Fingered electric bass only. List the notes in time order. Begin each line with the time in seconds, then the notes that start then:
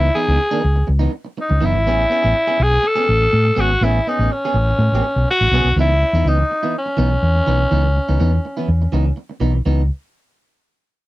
0.28 C#2
0.64 C#2
0.89 C#2
1.51 C#2
1.62 F#1
1.75 G#1
1.87 A1
2.24 A1
2.60 B1
3.09 A1
3.33 A2
3.57 G#1
3.81 A1
4.19 A1
4.54 A1
4.79 A2
4.92 A1
5.16 B1
5.41 A1
5.51 B1
5.64 B1
5.76 C#2
6.13 E2
6.25 C#2
6.98 B1
7.23 E2
7.47 B1
7.72 C#2
8.09 C#2
8.20 E2
8.68 E2
8.93 C#2
9.41 B1
9.66 C#2